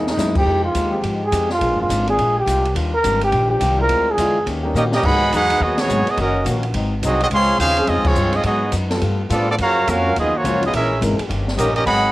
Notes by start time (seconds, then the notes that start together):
Already playing: E2 E3 A#3 C4 G#4
0.07 D#4, snare
0.17 F#2 C3 G#3 A#3 E4, snare, hi-hat pedal
0.35 F3 G#3 C4 D#4 G4, kick, crash
0.45 F2 F3 G#3 D#4 G4, kick
0.65 F4
0.74 D#2 F3 G#3 D#4 G4, kick, hi-hat pedal, ride
0.91 F3 G#3 C4 D#4 G4
1.02 G#2 F3 G#3 D#4 G4, kick, ride
1.24 G#4
1.32 F2 F3 G#3 D#4 G4, kick, hi-hat pedal, ride
1.50 F4, snare
1.59 A#1 A#2 F3 G#3 A#3 D4 F4 G#4, kick, ride
1.71 G#1
1.80 F1 F4
1.89 G#1 A#2 G#3 D4 F4, kick, hi-hat pedal, ride
2.07 G#3 A#3 C4 D4 F4 G#4, ride
2.18 A#1 A#2 G#3 D4 F4, kick, ride
2.39 G4
2.46 C2 A#2 G#3 D4 F4, kick, hi-hat pedal, ride
2.65 ride
2.74 D#2 D#3 G3 D4 F4, kick, ride
2.94 A#4
3.03 G#1 D#3 G3 D4 F4, kick, hi-hat pedal, ride
3.21 G4, ride
3.31 A#1 D#3 G3 D4 F4, kick, ride
3.48 F3 D4 G4
3.60 C2 D#3 G3 D4 F4, kick, hi-hat pedal, ride
3.78 G#3 C4 D4 E4 F4 A#4
3.87 D2 D3 G#3 C4 F4, kick, ride
4.11 G#4
4.17 E2 D3 G#3 C4 D4 E4 F4, kick, hi-hat pedal, ride
4.46 D#2 D#3 A#3 C#4 G4, kick, ride
4.64 D#3 G3 A#3 C#4 D#4 G4 A#4
4.74 A#2 D#3 G3 A#3 C#4 D#4 G4 A#4 D#5, hi-hat pedal
4.92 G3 A#3 C#4 D#4 G4 A#4 D#5, snare
5.02 G#2 D#3 F#3 G#3 B3 D#4 F#4 G#4 D#5 F#5 B5, kick, crash
5.31 E2 G#2 F#3 B3 D#4 F#4 G#4 B4 F#5, kick, hi-hat pedal, ride
5.50 ride
5.60 D#2 G#2 F#3 B3 D#4 F#4 G#4 D#5, kick
5.77 D#3 F#3 B3 C#4 F#4 G#4 C#5, snare, ride
5.87 G#1 G#2 F#3 B3 D#4, hi-hat pedal
6.07 F#3 B3 D#4 F#4 G#4 D#5, muted upright bass stroke, ride
6.17 F#1 D#3 F#3 A#3 C#4 D#4 F#4, kick, ride
6.22 C#4 F#4 A#4 D#5
6.44 A#1 D#3 A#3 C#4 F#4, kick, hi-hat pedal, ride
6.63 ride
6.74 G#1 G#2 F#3 C4 D#4, kick, ride
7.02 C2 G#2 F#3 C4 D#4, kick, hi-hat pedal, ride
7.06 C4 F#4 G#4 D#5
7.20 F#3 C4 D#4 F#4 G#4 D#5, ride
7.30 C#2 C#3 F3 G#3 C4 F4, kick, ride
7.35 G#4 C#5 F5 C6
7.58 D#2 C#3 G#3 C4 C#4 F4 G#4 C5 F5, kick, hi-hat pedal, ride
7.76 F3 C4 C#4 G#4, ride
7.86 F2 C#3 G#3 C4 D#4 F4 G#4 D#5, kick, ride
7.96 C#2
8.04 C2 F3 G#3 C4 C#4 F4 C#5, kick, crash
8.15 G2 C#3 G#3 C4 F4, hi-hat pedal
8.32 C4 D#4 F4 G#4 D#5, ride
8.43 G#2 F#3 B3 D#4 F#4 G#4 D#5, kick, ride
8.72 F#2 G#2 F#3 B3 D#4, kick, hi-hat pedal, ride
8.90 G3 B3 F4 A4, snare, ride
9.01 G2 G3 B3 F4 A4, kick, ride
9.29 A2 F3 G3 B3 D4 F4 A4 D5, kick, hi-hat pedal, ride
9.48 F3 B3 D4 F4 A4 D5
9.58 F#2 C#3 F3 A#3 C#4, kick, ride
9.62 F#4 C#5 F5 A#5
9.87 F2 F#2 F3 A#3 C#4 F4 F#4 A#4 F5, kick, hi-hat pedal, ride
10.04 F#3 C#4 F4 A#4
10.16 D#2 F#2 F3 A#3 B3 C#4 D#4 F4 D#5, kick, ride
10.20 G#4
10.36 F3 A#3 C#4 F4 F#4 C#5
10.44 C#2 F#2 F3 F#3 A#3 C#4 F4 C#5, kick, hi-hat pedal, ride
10.61 D#4, ride
10.66 B3 F4 G#4 D#5
10.72 A#1 A#2 E3 G#3 C#4 E4 G#4 E5, kick, ride
10.76 C#4 A#4
11.01 G#1 A#2 E3 G#3 C#4 E4 A#4, kick, hi-hat pedal, ride
11.18 muted upright bass stroke, ride
11.27 G1 D#3 A#3 C#4 G4, kick, ride
11.48 snare
11.57 A#1 D#3 G3 A#3 C#4 D#4 G4 A#4 D#5, kick, hi-hat pedal, ride
11.74 G3 A#3 C#4 D#4 G4 A#4 D#5, ride
11.84 G#1 G#2 D#3 F#3 B3 D#4 G#4 D#5 F#5 B5, kick, ride